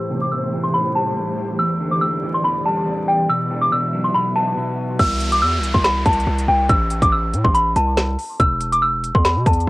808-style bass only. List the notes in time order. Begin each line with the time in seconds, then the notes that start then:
4.99 C2
5.42 E2
5.58 C2
5.74 C2
6.06 C2
6.27 C2
6.48 C2
6.70 A1
7.02 A1
7.33 A2
7.45 A1
7.76 C2
8.40 E1
9.15 E2
9.36 B2
9.46 E2